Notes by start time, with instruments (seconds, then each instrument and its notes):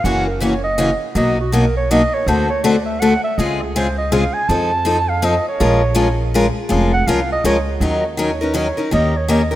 0.04 upright bass F#1, steel-string acoustic guitar C#3 E3 A#3 C#4 F#4, clarinet F#5
0.27 clarinet A#4
0.40 steel-string acoustic guitar C#3 E3 A#3 C#4 F#4, clarinet C#5
0.64 clarinet D#5
0.78 steel-string acoustic guitar C#3 E3 A#3 C#4 F#4
1.15 upright bass B1, steel-string acoustic guitar B2 F#3 A#3 D#4 F#4, clarinet D#5
1.40 clarinet F#4
1.52 steel-string acoustic guitar B2 F#3 A#3 D#4 F#4, clarinet A#4
1.77 clarinet C#5
1.91 steel-string acoustic guitar B2 F#3 A#3 D#4 F#4, clarinet D#5
2.14 clarinet C#5
2.26 upright bass D2, steel-string acoustic guitar D3 A3 C4 F#4 A4, clarinet C5
2.50 clarinet C#5
2.64 steel-string acoustic guitar D3 A3 C4 F#4 A4, clarinet D5
2.86 clarinet E5
3.00 steel-string acoustic guitar D3 A3 C4 F#4 A4, clarinet F#5
3.24 clarinet E5
3.38 upright bass C#2, steel-string acoustic guitar C#3 G#3 C4 F4 G#4, clarinet D#5
3.62 clarinet G#4
3.76 steel-string acoustic guitar C#3 G#3 C4 F4 G#4, clarinet C5
3.98 clarinet D#5
4.12 steel-string acoustic guitar C#3 G#3 C4 F4 G#4, clarinet F5
4.33 clarinet G#5
4.48 upright bass F2, steel-string acoustic guitar F3 C4 D#4 A4, clarinet A5
4.85 steel-string acoustic guitar F3 C4 D#4 A4
5.09 clarinet F5
5.22 steel-string acoustic guitar F3 C4 D#4 A4, clarinet D#5
5.48 clarinet C#5
5.60 upright bass A#1, steel-string acoustic guitar F3 G#3 C#4 F4 A#4
5.95 steel-string acoustic guitar F3 G#3 C#4 F4 A#4
6.34 steel-string acoustic guitar F3 G#3 C#4 F4 A#4
6.69 upright bass F1, steel-string acoustic guitar F3 G#3 C#4 F4 A#4
6.93 clarinet F#5
7.07 upright bass C2, steel-string acoustic guitar F3 G#3 C#4 F4 A#4, clarinet F5
7.32 clarinet D#5
7.44 upright bass C#2, steel-string acoustic guitar F3 G#3 C#4 F4 A#4, clarinet C#5
7.80 upright bass D#2, steel-string acoustic guitar D#3 F#3 C#4 D#4 A#4
8.17 steel-string acoustic guitar D#3 F#3 C#4 D#4 A#4, clarinet C#5
8.41 steel-string acoustic guitar C#4 D#4 A#4, clarinet B4
8.54 steel-string acoustic guitar D#3 F#3 C#4 D#4 A#4, clarinet C#5
8.77 steel-string acoustic guitar C#4 D#4 A#4
8.91 upright bass D#2, steel-string acoustic guitar D#3 A#3 C#4 G4 A#4, clarinet D#5
9.17 clarinet C#5
9.28 steel-string acoustic guitar D#3 A#3 C#4 G4 A#4, clarinet D#5
9.51 steel-string acoustic guitar G4 A#4